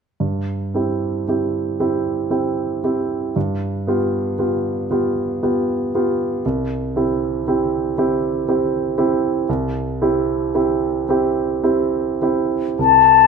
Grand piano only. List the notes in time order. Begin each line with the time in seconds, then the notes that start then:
0.20 G2
0.74 C4 E4 G4
1.28 C4 E4 G4
1.80 C4 E4 G4
2.30 C4 E4 G4
2.84 C4 E4 G4
3.36 G2
3.87 B3 F4 G4
4.38 B3 F4 G4
4.91 B3 F4 G4
5.43 B3 F4 G4
5.95 B3 F4 G4
6.45 C2
6.96 C4 E4 G4
7.48 C4 E4 G4
7.98 C4 E4 G4
8.49 C4 E4 G4
8.98 C4 E4 G4
9.49 C2
10.02 C4 E4 G4
10.55 C4 E4 G4
11.09 C4 E4 G4
11.63 C4 E4 G4
12.22 C4 E4 G4
12.79 C2